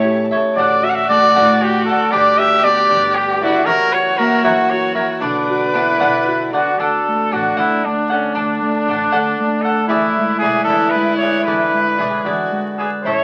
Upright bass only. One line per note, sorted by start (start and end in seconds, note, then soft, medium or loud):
0.00 0.30 A2 medium
0.57 1.36 A1 loud
1.36 1.86 A2 loud
2.14 2.93 G1 loud
2.92 3.41 G2 loud
3.67 4.46 F#1 loud
4.44 4.94 F#2 loud
5.22 6.02 B1 medium
6.01 6.52 B2 medium
6.79 6.97 D2 medium
7.33 7.49 A1 medium
7.58 7.76 D2 medium
8.37 8.54 D2 medium
8.89 9.05 A1 medium
9.14 9.31 D2 loud
9.90 10.07 E2 loud
10.43 10.59 B1 medium
10.68 10.85 E2 loud
11.47 11.65 E2 medium
12.00 12.17 B1 medium
12.26 12.44 E2 loud
13.05 13.23 A1 medium